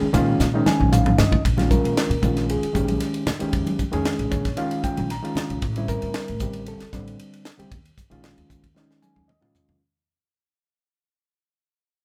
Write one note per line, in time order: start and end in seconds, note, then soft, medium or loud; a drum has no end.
0.02 muted upright bass stroke soft
0.13 0.35 A#2 medium
0.13 0.45 D#3 loud
0.13 0.46 G#3 medium
0.13 0.46 C#4 medium
0.13 0.46 F4 loud
0.13 hi-hat pedal medium
0.13 ride medium
0.13 low conga medium
0.40 0.61 A#2 medium
0.40 snare medium
0.40 hi-hat pedal medium
0.54 1.38 D#3 medium
0.54 1.38 G#3 medium
0.54 1.39 C#4 medium
0.54 1.39 D#4 medium
0.66 0.90 G#5 medium
0.66 snare medium
0.66 hi-hat pedal medium
0.66 high conga medium
0.80 1.11 A#1 medium
0.80 high conga soft
0.92 1.16 F5 medium
0.92 hi-hat pedal medium
0.92 mid tom medium
0.92 high conga medium
1.06 mid tom medium
1.06 high conga medium
1.18 1.29 G2 medium
1.18 1.42 D#5 medium
1.18 snare loud
1.18 hi-hat pedal medium
1.18 low conga medium
1.32 muted upright bass stroke soft
1.32 kick medium
1.32 low conga medium
1.45 1.77 A#1 medium
1.45 kick medium
1.45 ride medium
1.57 2.10 D#3 medium
1.57 2.10 G#3 medium
1.57 2.11 C#4 medium
1.57 2.11 F4 medium
1.57 snare soft
1.57 ride medium
1.57 high conga medium
1.71 2.45 A#4 medium
1.71 kick medium
1.71 hi-hat pedal medium
1.71 high conga medium
1.84 1.94 A#2 medium
1.84 ride soft
1.97 snare loud
1.97 ride medium
2.10 2.20 A#2 medium
2.10 ride medium
2.22 2.55 A#1 medium
2.22 2.65 D#3 medium
2.22 2.65 G#3 medium
2.22 2.65 C#4 medium
2.22 2.66 F4 medium
2.22 kick medium
2.22 hi-hat pedal medium
2.22 low conga medium
2.37 snare soft
2.37 ride soft
2.50 2.98 G#4 medium
2.50 ride medium
2.63 muted upright bass stroke soft
2.63 ride medium
2.73 2.96 A#1 medium
2.73 3.27 D#3 medium
2.73 3.27 G#3 medium
2.73 3.28 C#4 medium
2.73 3.28 G4 medium
2.73 kick medium
2.73 hi-hat pedal medium
2.88 ride medium
2.88 high conga medium
3.00 snare soft
3.00 ride medium
3.14 ride medium
3.27 snare loud
3.27 hi-hat pedal medium
3.27 low conga medium
3.40 3.82 D#3 medium
3.40 3.82 G#3 medium
3.40 3.83 C#4 medium
3.40 3.83 G4 medium
3.40 muted upright bass stroke soft
3.40 ride medium
3.53 3.74 F2 medium
3.53 kick medium
3.53 ride medium
3.67 ride medium
3.67 high conga medium
3.79 muted upright bass stroke soft
3.79 kick medium
3.79 hi-hat pedal medium
3.79 high conga medium
3.92 4.14 F2 medium
3.92 4.45 D#3 medium
3.92 4.45 G#3 medium
3.92 4.46 C#4 medium
3.92 4.46 G#4 loud
3.92 ride medium
4.05 snare loud
4.05 ride medium
4.19 4.29 A#1 medium
4.19 ride medium
4.31 4.53 A#1 medium
4.31 4.55 C#5 medium
4.31 kick medium
4.31 hi-hat pedal medium
4.31 low conga medium
4.45 kick medium
4.45 snare soft
4.45 ride medium
4.57 5.10 D#3 medium
4.57 5.10 G#3 medium
4.57 5.11 C#4 medium
4.57 5.11 F4 medium
4.57 4.82 F5 medium
4.57 ride medium
4.71 ride medium
4.83 5.08 G5 medium
4.83 kick medium
4.83 hi-hat pedal medium
4.97 5.18 A#1 medium
4.97 ride medium
4.97 high conga medium
5.10 5.59 A#5 medium
5.10 snare soft
5.10 ride medium
5.22 5.61 D#3 medium
5.22 5.62 G#3 medium
5.22 5.62 C#4 medium
5.22 5.62 F4 medium
5.22 ride medium
5.35 snare loud
5.35 hi-hat pedal medium
5.35 low conga medium
5.50 5.60 A#1 medium
5.50 ride medium
5.62 5.94 A1 medium
5.62 kick medium
5.62 ride medium
5.76 6.29 D3 medium
5.76 6.29 G3 medium
5.76 6.29 C4 medium
5.76 6.30 E4 medium
5.76 ride soft
5.88 6.63 A#4 medium
5.88 kick medium
5.88 hi-hat pedal medium
6.02 6.12 A2 medium
6.02 ride medium
6.14 snare loud
6.14 ride medium
6.28 6.39 A2 medium
6.28 ride soft
6.40 6.72 A1 medium
6.40 6.83 D3 medium
6.40 6.83 G3 medium
6.40 6.84 C4 medium
6.40 6.84 G4 medium
6.40 kick medium
6.40 hi-hat pedal medium
6.53 ride medium
6.66 7.16 A4 medium
6.66 ride medium
6.80 muted upright bass stroke soft
6.80 snare soft
6.80 ride soft
6.93 7.14 A1 medium
6.93 7.46 D3 medium
6.93 7.46 G3 medium
6.93 7.46 C4 medium
6.93 7.47 D4 medium
6.93 kick medium
6.93 snare soft
6.93 hi-hat pedal medium
7.08 ride soft
7.19 ride medium
7.33 ride medium
7.45 snare loud
7.45 hi-hat pedal medium
7.58 7.70 D3 medium
7.58 7.71 G3 medium
7.58 7.71 C4 medium
7.58 7.71 G4 medium
7.58 muted upright bass stroke soft
7.58 ride medium
7.72 7.92 D#2 medium
7.72 kick medium
7.72 ride medium
7.85 ride medium
7.97 muted upright bass stroke soft
7.97 kick medium
7.97 hi-hat pedal medium
8.10 8.32 A#1 medium
8.10 8.64 D#3 medium
8.10 8.64 G#3 medium
8.10 8.64 C#4 medium
8.10 8.65 F4 medium
8.10 ride soft
8.24 snare medium
8.24 ride medium
8.37 8.47 D#2 medium
8.37 ride soft
8.50 8.71 D#2 medium
8.50 kick medium
8.50 hi-hat pedal medium
8.64 kick medium
8.64 ride medium
8.75 9.29 D#3 medium
8.75 9.29 G#3 medium
8.75 9.29 C#4 medium
8.75 9.30 D#4 medium
8.75 snare soft
8.91 snare soft
9.02 9.26 G#5 medium
9.02 hi-hat pedal medium
9.02 high tom medium
9.16 9.37 D#2 medium
9.16 high tom medium
9.28 9.77 D#5 medium
9.28 mid tom medium
9.40 9.80 D#3 medium
9.40 9.80 G#3 medium
9.40 9.80 C#4 medium
9.40 9.81 F4 medium
9.40 mid tom medium
9.55 floor tom medium
9.55 hi-hat pedal medium
9.68 9.78 D#3 medium
9.68 floor tom medium